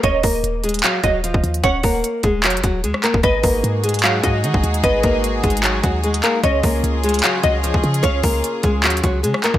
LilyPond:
<<
  \new Staff \with { instrumentName = "Synth pluck" } { \time 4/4 \key ees \minor \tempo 4 = 150 ees''2 f''8 ees''4. | ges''4 r2. | ees''2 f''8 ees''4. | ees''4 r2 r8 f''8 |
ees''2 f''8 ees''4. | f''4 r2. | }
  \new Staff \with { instrumentName = "Nylon-string guitar" } { \time 4/4 \key ees \minor <des' des''>8 <bes bes'>4 <aes aes'>8 <ges ges'>8 <ges ges'>8 <f f'>4 | <des' des''>8 <bes bes'>4 <aes aes'>8 <ges ges'>8 <ges ges'>8 <aes aes'>8 <bes bes'>8 | <ces' ces''>8 <bes bes'>4 <aes aes'>8 <ges ges'>8 <ges ges'>8 <ees' ees''>4 | <ces' ces''>8 <bes bes'>4 <aes aes'>8 <ges ges'>8 <ges ges'>8 <aes aes'>8 <bes bes'>8 |
<des' des''>8 <bes bes'>4 <aes aes'>8 <ges ges'>8 <ges ges'>8 <f f'>4 | <des' des''>8 <bes bes'>4 <aes aes'>8 <ges ges'>8 <ges ges'>8 <aes aes'>8 <bes bes'>8 | }
  \new Staff \with { instrumentName = "String section" } { \time 4/4 \key ees \minor r1 | r1 | <aes ees' ges' aes'>1~ | <aes ees' ges' aes'>1 |
<des des' f' aes'>1~ | <des des' f' aes'>1 | }
  \new Staff \with { instrumentName = "808-style bass" } { \clef bass \time 4/4 \key ees \minor ees,,8 ees,,8 ees,,4 r8 ees,,8. ees,,16 ees,8 | ees,,8 ees,,8 r8 ees,,8 f,,8 ees,,8 ees,16 r8 ees,,16 | aes,,8 aes,,8 aes,4. aes,8 ees16 aes,,16 ees,8 | aes,,8 aes,,4 aes,,4 ees,4 r8 |
des,8 des,8 des,4 r8 des,8. des,16 des8 | des,8 des,8 r8 des,8 ees,8 des,8 des16 r8 des,16 | }
  \new DrumStaff \with { instrumentName = "Drums" } \drummode { \time 4/4 <hh bd>8 <hho bd>8 hh8 hh32 hh32 hh32 hh32 <hc hh>8 <hh bd>8 hh16 bd16 hh16 hh16 | <hh bd>8 <hho bd>8 hh8 <hh bd>8 \tuplet 3/2 { <hc hh>16 hh16 hh16 <hh bd>16 r16 r16 } hh16 ss16 <hc hh>16 bd16 | <hh bd>8 <hho bd>8 hh8 hh32 hh32 hh32 hh32 <hc hh>8 <hh bd>8 hh16 bd16 hh16 hh16 | <hh bd>8 <hh bd>8 \tuplet 3/2 { hh16 r16 r16 <hh bd>16 hh16 hh16 } <hc hh>8 <hh bd>8 hh16 hh16 <hc hh>8 |
<hh bd>8 <hho bd>8 hh8 hh32 hh32 hh32 hh32 <hc hh>8 <hh bd>8 hh16 bd16 hh16 hh16 | <hh bd>8 <hho bd>8 hh8 <hh bd>8 \tuplet 3/2 { <hc hh>16 hh16 hh16 <hh bd>16 r16 r16 } hh16 ss16 <hc hh>16 bd16 | }
>>